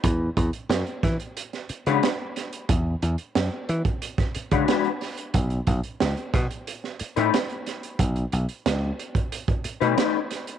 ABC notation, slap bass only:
X:1
M:4/4
L:1/16
Q:1/4=91
K:Elyd
V:1 name="Slap bass" clef=bass
E,,2 E,, z F,, z E, z4 C, z4 | E,,2 E,, z F,, z E, z4 C, z4 | B,,,2 B,,, z C,, z B,, z4 =A,, z4 | B,,,2 B,,, z C,,2 z4 z B,, z4 |]